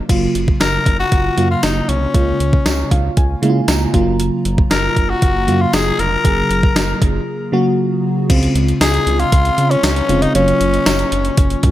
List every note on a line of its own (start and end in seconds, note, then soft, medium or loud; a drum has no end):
0.00 0.09 C#3 medium
0.00 0.09 F#3 medium
0.00 0.10 A#3 medium
0.00 0.10 F4 medium
0.09 0.28 F#1 loud
0.09 0.99 C#3 medium
0.09 1.00 F#3 medium
0.09 1.00 A#3 medium
0.09 1.00 F4 medium
0.09 kick loud
0.09 closed hi-hat loud
0.09 crash medium
0.35 0.54 F#1 medium
0.35 closed hi-hat medium
0.48 kick medium
0.60 0.79 F#1 loud
0.60 0.97 A#4 loud
0.60 snare loud
0.60 closed hi-hat medium
0.60 tambourine medium
0.86 1.05 F#1 loud
0.86 kick medium
0.86 closed hi-hat medium
1.00 1.47 F#4 medium
1.12 1.30 F#1 loud
1.12 kick medium
1.12 closed hi-hat medium
1.37 1.56 F#2 loud
1.37 2.05 C#3 medium
1.37 2.05 F#3 medium
1.37 2.05 A#3 medium
1.37 2.06 F4 medium
1.37 closed hi-hat medium
1.51 1.65 F4 medium
1.63 1.82 F#1 medium
1.63 1.91 D#4 medium
1.63 snare loud
1.63 closed hi-hat medium
1.63 tambourine medium
1.89 2.07 C2 loud
1.89 2.92 C#4 medium
1.89 closed hi-hat medium
2.14 2.33 C#2 loud
2.14 3.04 C#3 medium
2.14 3.05 G#3 medium
2.14 3.05 A#3 medium
2.14 3.05 F4 medium
2.14 kick loud
2.14 closed hi-hat medium
2.40 2.59 C#2 medium
2.40 closed hi-hat medium
2.53 kick medium
2.66 2.84 C#2 loud
2.66 snare loud
2.66 closed hi-hat medium
2.66 tambourine medium
2.91 3.10 C#2 loud
2.91 3.15 F5 medium
2.91 kick medium
2.91 closed hi-hat medium
3.17 3.36 C#2 loud
3.17 3.65 G#5 medium
3.17 kick medium
3.17 closed hi-hat medium
3.42 3.92 C#3 medium
3.42 3.61 C#3 medium
3.42 3.94 G#3 medium
3.42 3.93 A#3 medium
3.42 3.49 E4 medium
3.42 closed hi-hat medium
3.50 3.93 F4 medium
3.68 3.87 C#2 loud
3.68 4.16 A#5 medium
3.68 snare loud
3.68 closed hi-hat medium
3.68 tambourine medium
3.93 4.31 F#1 loud
3.93 4.84 C#3 medium
3.93 4.84 F#3 medium
3.93 4.84 A#3 medium
3.93 4.84 F4 medium
3.93 kick loud
3.93 closed hi-hat medium
4.20 closed hi-hat medium
4.45 4.64 F#1 loud
4.45 closed hi-hat medium
4.58 kick medium
4.71 4.89 F#1 loud
4.71 5.12 A#4 loud
4.71 snare loud
4.71 closed hi-hat medium
4.71 tambourine medium
4.96 5.15 F#1 loud
4.96 kick medium
4.96 closed hi-hat medium
5.10 5.63 F#4 medium
5.22 5.49 F#1 loud
5.22 kick medium
5.22 closed hi-hat loud
5.47 5.66 F#2 loud
5.47 6.15 C#3 medium
5.47 6.15 F#3 medium
5.47 6.16 A#3 medium
5.47 6.16 F4 medium
5.47 closed hi-hat medium
5.61 5.76 F4 medium
5.73 5.92 F#1 loud
5.73 6.01 G#4 medium
5.73 snare loud
5.73 closed hi-hat medium
5.73 tambourine medium
5.99 6.17 F1 medium
5.99 7.02 A#4 loud
5.99 closed hi-hat medium
6.24 6.43 F#1 loud
6.24 7.15 C#3 medium
6.24 7.15 F#3 medium
6.24 7.15 A#3 medium
6.24 7.15 G#4 medium
6.24 kick loud
6.24 closed hi-hat loud
6.50 6.69 F#1 loud
6.50 closed hi-hat medium
6.63 kick medium
6.76 6.94 F#1 medium
6.76 snare loud
6.76 closed hi-hat medium
6.76 tambourine medium
7.02 7.20 F#1 loud
7.02 kick medium
7.02 closed hi-hat medium
7.52 8.20 C#3 medium
7.52 8.21 F#3 medium
7.52 8.21 A#3 medium
7.52 8.21 F#4 loud
8.29 8.48 C#2 loud
8.29 9.20 C#3 medium
8.29 9.20 G#3 medium
8.29 9.20 C4 medium
8.29 9.20 F4 medium
8.29 kick loud
8.29 closed hi-hat loud
8.29 crash medium
8.43 closed hi-hat medium
8.55 8.74 C#2 loud
8.55 closed hi-hat medium
8.68 closed hi-hat soft
8.81 8.99 C#2 loud
8.81 9.22 G#4 loud
8.81 9.17 G#5 medium
8.81 snare loud
8.81 closed hi-hat medium
8.81 tambourine medium
8.94 closed hi-hat soft
9.07 9.25 C#2 loud
9.07 closed hi-hat medium
9.20 9.73 F4 medium
9.20 9.71 F5 medium
9.20 closed hi-hat soft
9.32 9.51 C#2 loud
9.32 kick loud
9.32 closed hi-hat medium
9.45 closed hi-hat soft
9.58 9.76 C#3 medium
9.58 closed hi-hat medium
9.71 10.24 C#4 medium
9.71 10.22 C#5 medium
9.71 closed hi-hat medium
9.83 10.02 C#2 medium
9.83 snare loud
9.83 closed hi-hat medium
9.83 tambourine medium
9.96 closed hi-hat soft
10.09 10.28 F1 medium
10.09 10.32 C#3 medium
10.09 10.32 G#3 medium
10.09 10.32 C4 medium
10.09 10.32 F4 medium
10.09 closed hi-hat medium
10.22 10.35 D#4 medium
10.22 10.35 D#5 medium
10.22 closed hi-hat medium
10.34 10.53 F#1 loud
10.34 11.25 C#3 medium
10.34 11.25 F#3 medium
10.34 11.25 A#3 medium
10.34 11.71 C#4 medium
10.34 11.25 F4 medium
10.34 11.71 C#5 medium
10.34 closed hi-hat loud
10.48 closed hi-hat medium
10.60 10.79 F#1 loud
10.60 closed hi-hat medium
10.74 closed hi-hat soft
10.86 11.05 F#1 loud
10.86 snare loud
10.86 closed hi-hat medium
10.86 tambourine medium
10.99 closed hi-hat soft
11.12 11.30 F#1 loud
11.12 closed hi-hat medium
11.25 closed hi-hat medium
11.37 11.56 F#1 loud
11.37 kick loud
11.37 closed hi-hat loud
11.50 closed hi-hat medium
11.63 11.71 F#2 medium
11.63 kick medium
11.63 closed hi-hat medium